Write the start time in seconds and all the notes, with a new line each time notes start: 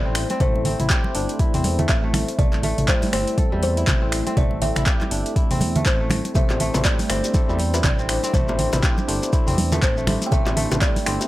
Already playing: A1 G3 A3 E4 A4 C5 D5
0.06 C4
0.15 finger snap, open hi-hat
0.30 C4, closed hi-hat, muted conga
0.40 A1 A3 C5, kick, closed hi-hat, mid tom, high conga
0.56 muted conga
0.65 C4, open hi-hat, low conga
0.80 A1 E4, closed hi-hat, mid tom, muted conga
0.90 G4, kick, clap, closed hi-hat
1.04 muted conga, high conga
1.15 G1 D4, open hi-hat
1.29 closed hi-hat
1.39 E4, kick, closed hi-hat, muted conga
1.54 E2 C4, open hi-hat, mid tom
1.64 open hi-hat, muted conga, high conga
1.79 A3, closed hi-hat, low conga
1.89 A1 E5, kick, clap, closed hi-hat, muted conga
2.04 A3
2.14 finger snap, open hi-hat, high conga, low conga
2.28 closed hi-hat, muted conga
2.39 A1 A3 D5 E5, kick, closed hi-hat, mid tom, high conga
2.53 clap, muted conga
2.63 A3, open hi-hat, low conga
2.78 A1, closed hi-hat, mid tom, muted conga
2.88 G3 C5, kick, clap, closed hi-hat
3.02 open hi-hat, muted conga, high conga
3.13 G1 C4 C5, finger snap, open hi-hat
3.27 closed hi-hat
3.38 A4, kick, closed hi-hat, muted conga, high conga
3.52 E2 G3
3.63 C5, open hi-hat, muted conga
3.77 E4, closed hi-hat
3.87 A1, kick, clap, closed hi-hat, mid tom, muted conga, low conga
4.02 C4
4.12 finger snap, open hi-hat
4.27 C4, closed hi-hat, muted conga
4.37 A1 A3 D5, kick, closed hi-hat, mid tom, high conga
4.51 muted conga
4.62 C4 E5, open hi-hat, low conga
4.76 A1 E4, finger snap, closed hi-hat, mid tom, muted conga
4.86 G4, kick, clap, closed hi-hat
5.01 clap, muted conga, high conga
5.11 G1 D4, open hi-hat
5.26 closed hi-hat
5.36 E4, kick, closed hi-hat, muted conga
5.51 E2 C4, open hi-hat, mid tom
5.61 open hi-hat, muted conga, high conga, low conga
5.76 A3, closed hi-hat, low conga
5.86 A1 C5, kick, clap, closed hi-hat, muted conga
6.01 A3
6.10 finger snap, open hi-hat, high conga, low conga
6.25 closed hi-hat, muted conga
6.35 A1 A3 C4 D4 E4 G4 C5 E5, kick, closed hi-hat, mid tom, high conga, shekere
6.49 clap, low bongo, muted conga, shekere
6.60 A3, open hi-hat, low conga
6.74 A1 A3 C4 E4 G4 C5, closed hi-hat, mid tom, high bongo, low bongo, muted conga, shekere
6.85 G3 D5, kick, clap, closed hi-hat, shekere
6.99 open hi-hat, muted conga, high conga, shekere
7.10 G1 A3 C4 E4 G4 C5, finger snap, open hi-hat
7.24 closed hi-hat, low bongo, shekere
7.34 A3 C4 E4 G4 A4 C5, kick, closed hi-hat, muted conga, high conga, shekere
7.49 E2 G3, shekere
7.59 open hi-hat, muted conga
7.74 A3 C4 E4 G4 C5, closed hi-hat, high bongo, shekere
7.83 A1 D5, kick, clap, closed hi-hat, mid tom, muted conga, low conga, shekere
7.99 C4, shekere
8.09 A3 C4 E4 G4 C5, finger snap, open hi-hat
8.23 C4, closed hi-hat, muted conga, shekere
8.34 A1 A3 C4 E4 G4 C5, kick, closed hi-hat, mid tom, high conga, shekere
8.48 low bongo, muted conga, shekere
8.59 C4, open hi-hat, low conga
8.73 A1 A3 C4 E4 G4 C5, closed hi-hat, mid tom, high bongo, low bongo, muted conga, shekere
8.83 G4, kick, clap, closed hi-hat, shekere
8.98 muted conga, high conga, shekere
9.08 G1 A3 C4 D4 E4 G4 C5, open hi-hat
9.23 closed hi-hat, low bongo, shekere
9.33 A3 C4 E4 G4 C5, kick, closed hi-hat, muted conga, shekere
9.47 E2 C4, open hi-hat, mid tom, shekere
9.58 open hi-hat, muted conga, high conga
9.72 A3 C4 E4 G4 C5, closed hi-hat, high bongo, low conga, shekere
9.82 A1 C5, kick, clap, closed hi-hat, muted conga, shekere
9.97 A3, shekere
10.07 A3 C4 E4 G4 C5, finger snap, open hi-hat, high conga, low conga
10.22 closed hi-hat, muted conga, shekere
10.26 G5
10.31 A1 A3 C4 E4 G4 C5 E5, kick, closed hi-hat, mid tom, high conga, shekere
10.46 clap, low bongo, muted conga, shekere
10.57 A3, open hi-hat, low conga
10.71 A1 A3 C4 E4 G4 C5, closed hi-hat, mid tom, high bongo, low bongo, muted conga, shekere
10.81 G3 D5, kick, clap, closed hi-hat, shekere
10.96 open hi-hat, muted conga, high conga, shekere
11.06 G1 A3 C4 E4 G4 C5, finger snap, open hi-hat
11.21 closed hi-hat, low bongo, shekere